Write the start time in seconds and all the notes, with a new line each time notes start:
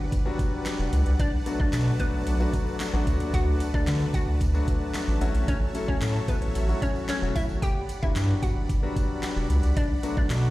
Already playing: F#3 G3 B3 D4 F#4 B4 D5 F#5, impact
0.12 G1, kick, closed hi-hat, tambourine
0.26 F#3 G3 B3 D4 F#4
0.39 kick, closed hi-hat, tambourine
0.66 snare, clap, closed hi-hat, tambourine
0.79 E1
0.93 C#2, closed hi-hat, tambourine
1.06 C2, closed hi-hat
1.19 B1 D4 B4 D5 A5, kick, closed hi-hat, tambourine
1.46 F#3 A3 B3 D4 F#4, closed hi-hat, tambourine
1.60 B1 D4 D5, kick
1.73 B2, snare, clap, closed hi-hat, tambourine
2.00 F#3 A3 B3 D4 F#4 B4, kick, closed hi-hat, tambourine
2.13 B1
2.27 B1, closed hi-hat, tambourine
2.40 F#3 A3 B3 D4 F#4, tambourine
2.53 F#3 A3 B3 D4 F#4, kick, closed hi-hat, tambourine
2.67 tambourine
2.80 snare, clap, closed hi-hat, tambourine
2.93 A1 F#3 A3 B3 D4 F#4
3.07 D2 F#3 A3 B3 D4 F#4, kick, closed hi-hat, tambourine
3.20 D#2, closed hi-hat, tambourine
3.34 D2 F#4 F#5, kick, closed hi-hat, tambourine
3.60 closed hi-hat, tambourine
3.74 D2 F#3 A3 B3 D4 A4 D5, kick, tambourine
3.87 D3, snare, clap, closed hi-hat, tambourine
4.14 F#4 F#5, kick, closed hi-hat, tambourine
4.27 D2
4.41 D2, kick, closed hi-hat, tambourine
4.54 F#3 A3 B3 D4 F#4, tambourine
4.68 kick, closed hi-hat, tambourine
4.94 snare, clap, closed hi-hat, tambourine
5.08 A1
5.21 A1 F#3 A3 C#4 E4 F#4 C#5 E5, closed hi-hat, tambourine
5.35 A#1, closed hi-hat, tambourine
5.48 A1 C#4 C#5, kick, closed hi-hat, tambourine
5.75 F#3 A3 C#4 E4 A4, closed hi-hat, tambourine
5.88 A1 C#4 C#5, kick
6.01 A2, snare, clap, closed hi-hat, tambourine
6.28 F#3 A3 B3 C#4 E4 A4 B4, kick, closed hi-hat, tambourine
6.42 A1, closed hi-hat
6.55 A1, closed hi-hat, tambourine
6.68 F#3 A3 C#4 E4 F#4, tambourine
6.82 F#3 C#4 E4 F#4 C#5, kick, closed hi-hat, tambourine
6.96 tambourine
7.09 C#4 C#5, snare, clap, closed hi-hat, tambourine
7.22 E1 F#3 A3 C#4 E4 F#4
7.35 A1 E4 E5, kick, open hi-hat, tambourine
7.49 G#1, tambourine
7.62 G1 G4 D5 F#5 G5 B5, kick, closed hi-hat, tambourine
7.89 closed hi-hat, tambourine
8.02 G1 F#3 G3 B3 D4 E4 F#4 E5, kick, tambourine
8.16 G2, snare, clap, closed hi-hat, tambourine
8.43 F#4 F#5, kick, closed hi-hat, tambourine
8.56 G1
8.69 G1, kick, closed hi-hat, tambourine
8.83 F#3 G3 B3 D4 F#4
8.96 kick, closed hi-hat, tambourine
9.23 snare, clap, closed hi-hat, tambourine
9.36 E1
9.50 C#2, closed hi-hat, tambourine
9.63 C2, closed hi-hat, tambourine
9.77 B1 D4 D5 A5, kick, closed hi-hat, tambourine
10.03 F#3 A3 B3 D4 F#4, closed hi-hat, tambourine
10.17 B1 D4 D5, kick, tambourine
10.30 B2, snare, clap, closed hi-hat, tambourine